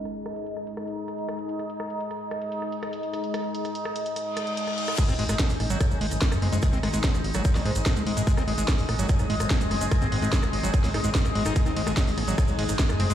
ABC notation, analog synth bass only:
X:1
M:4/4
L:1/16
Q:1/4=146
K:G#
V:1 name="Analog synth bass" clef=bass
z16 | z16 | z16 | z G,,, G,,, G,,, z G,,, =A,,, G,,, z G,,, G,,, G,,, z ^F,,, F,,, F,,, |
z G,,, G,,, G,,, z G,,, G,,, G,,, z =A,,, G,, G,,, z G,, G,, G,,, | z G,,, G,,, G,,, z G,,, =A,,, G,,, z G,,, G,,, G,,, z ^F,,, F,,, F,,, | z G,,, G,,, G,,, z G,,, G,,, G,,, z =A,,, G,, G,,, z G,,, G,,, G,,, | z G,,, G,,, G,,, z G,,, =A,,, G,,, z G,,, G,,, G,,, z ^F,,, F,,, F,,, |]